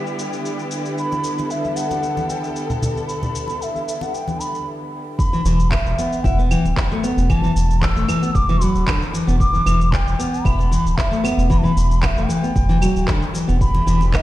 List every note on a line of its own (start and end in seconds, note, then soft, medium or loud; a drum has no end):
0.00 5.15 D3 medium
0.00 5.15 G3 medium
0.00 5.15 B3 medium
0.00 5.15 E4 medium
0.00 0.94 G4 medium
0.07 shaker soft
0.19 shaker medium
0.33 shaker soft
0.45 shaker soft
0.59 shaker soft
0.71 shaker medium
0.85 shaker soft
0.98 5.15 A4 medium
0.98 1.52 B5 loud
0.98 shaker soft
1.12 muted conga soft
1.12 shaker soft
1.24 shaker medium
1.38 muted conga soft
1.38 shaker soft
1.50 1.78 E5 medium
1.50 shaker soft
1.64 high conga soft
1.64 shaker soft
1.76 2.28 F#5 medium
1.76 shaker medium
1.91 muted conga medium
1.91 shaker soft
2.03 shaker soft
2.17 high conga medium
2.17 shaker soft
2.29 2.78 G5 medium
2.29 shaker medium
2.44 shaker soft
2.56 shaker soft
2.70 low conga medium
2.70 shaker soft
2.82 low conga medium
2.82 shaker medium
2.97 shaker soft
3.08 3.64 B5 loud
3.08 shaker soft
3.23 muted conga soft
3.23 low conga medium
3.23 shaker soft
3.35 shaker medium
3.48 muted conga soft
3.48 shaker soft
3.62 4.04 E5 medium
3.62 shaker soft
3.76 high conga soft
3.76 shaker soft
3.89 shaker medium
4.01 4.16 F#5 medium
4.01 muted conga medium
4.01 shaker soft
4.14 4.41 G5 medium
4.14 shaker soft
4.28 high conga medium
4.28 shaker soft
4.40 4.66 B5 medium
4.40 shaker medium
4.55 shaker soft
5.18 5.72 B5 loud
5.18 kick loud
5.18 shaker soft
5.33 5.40 E3 medium
5.33 shaker soft
5.45 5.77 E1 loud
5.45 5.59 E3 medium
5.45 shaker medium
5.60 shaker soft
5.70 6.22 E5 medium
5.70 kick loud
5.70 clap loud
5.70 claves medium
5.70 shaker soft
5.86 5.93 E1 medium
5.86 shaker soft
5.98 6.23 B3 medium
5.98 shaker medium
6.13 shaker soft
6.23 6.56 E1 medium
6.23 6.38 E4 medium
6.23 6.48 F#5 medium
6.23 6.27 G5 medium
6.23 kick loud
6.23 shaker soft
6.39 6.50 B3 medium
6.39 shaker soft
6.49 6.64 E3 medium
6.49 6.99 G5 medium
6.49 claves medium
6.49 shaker medium
6.65 6.72 D1 medium
6.65 shaker soft
6.77 kick loud
6.77 clap loud
6.77 shaker soft
6.92 7.03 A3 medium
6.92 shaker soft
7.03 7.28 B3 medium
7.03 shaker medium
7.17 7.48 E1 medium
7.17 shaker soft
7.29 7.42 E3 loud
7.29 7.83 A5 loud
7.29 kick loud
7.29 claves medium
7.29 shaker soft
7.44 7.51 E3 medium
7.44 shaker soft
7.56 7.87 E1 medium
7.56 shaker medium
7.71 shaker soft
7.82 8.37 E6 loud
7.82 kick loud
7.82 clap loud
7.82 shaker soft
7.96 8.04 E1 medium
7.96 8.07 A3 medium
7.96 shaker soft
8.08 8.21 E3 medium
8.08 claves medium
8.08 shaker medium
8.22 8.30 B3 medium
8.22 shaker soft
8.35 8.66 E1 medium
8.35 8.64 D6 loud
8.35 kick loud
8.35 shaker soft
8.49 8.56 E3 loud
8.49 shaker soft
8.61 8.86 F#3 medium
8.61 9.14 B5 medium
8.61 shaker medium
8.75 8.83 D1 medium
8.75 shaker soft
8.87 9.01 D3 medium
8.87 kick loud
8.87 clap loud
8.87 claves medium
8.87 shaker soft
9.02 shaker soft
9.13 9.26 E3 medium
9.13 shaker medium
9.27 9.59 E1 medium
9.27 9.35 B3 medium
9.27 shaker soft
9.40 9.93 D6 loud
9.40 kick loud
9.40 shaker soft
9.54 9.61 E3 medium
9.54 shaker soft
9.66 9.98 E1 medium
9.66 9.79 E3 medium
9.66 claves medium
9.66 shaker medium
9.81 shaker soft
9.92 10.46 G5 loud
9.92 kick loud
9.92 clap loud
9.92 shaker soft
10.07 10.14 E1 medium
10.07 shaker soft
10.19 10.44 B3 medium
10.19 shaker medium
10.34 shaker soft
10.44 10.77 E1 medium
10.44 10.58 E4 medium
10.44 10.98 B5 loud
10.44 kick loud
10.44 claves medium
10.44 shaker soft
10.59 10.70 B3 medium
10.59 shaker soft
10.71 10.85 E3 medium
10.71 shaker medium
10.85 10.93 D1 medium
10.85 shaker soft
10.96 11.49 E5 loud
10.96 kick loud
10.96 clap loud
10.96 shaker soft
11.11 11.23 A3 medium
11.11 shaker soft
11.24 11.49 B3 medium
11.24 claves medium
11.24 shaker medium
11.38 11.69 E1 medium
11.38 shaker soft
11.50 11.62 E3 loud
11.50 11.60 B5 loud
11.50 kick loud
11.50 shaker soft
11.58 11.66 A5 medium
11.63 11.71 E3 medium
11.63 12.03 B5 loud
11.63 shaker soft
11.77 12.08 E1 loud
11.77 shaker medium
11.91 shaker soft
12.01 12.07 F#5 medium
12.01 kick loud
12.01 clap loud
12.01 claves medium
12.01 shaker soft
12.06 12.29 E5 medium
12.17 12.25 E1 medium
12.17 12.28 A3 medium
12.17 shaker soft
12.27 12.42 E3 medium
12.27 13.34 G5 loud
12.27 shaker medium
12.43 12.50 B3 medium
12.43 shaker soft
12.56 12.87 E1 medium
12.56 kick loud
12.56 shaker soft
12.69 12.77 E3 medium
12.69 shaker soft
12.81 13.07 F#3 medium
12.81 claves medium
12.81 shaker medium
12.96 13.04 D1 medium
12.96 shaker soft
13.07 13.21 D3 medium
13.07 kick loud
13.07 clap loud
13.07 shaker soft
13.22 shaker soft
13.34 13.47 E3 medium
13.34 shaker medium
13.48 13.80 E1 medium
13.48 13.55 B3 medium
13.48 shaker soft
13.61 14.22 D3 medium
13.61 14.22 G3 medium
13.61 14.22 B3 medium
13.61 14.22 E4 medium
13.61 14.22 G4 loud
13.61 14.17 B5 loud
13.61 kick loud
13.61 shaker soft
13.75 13.82 E3 medium
13.75 muted conga medium
13.75 shaker soft
13.87 14.19 E1 loud
13.87 14.00 E3 medium
13.87 shaker medium
14.01 muted conga soft
14.01 shaker soft
14.14 14.22 E5 medium
14.14 kick loud
14.14 clap medium
14.14 claves medium
14.14 shaker soft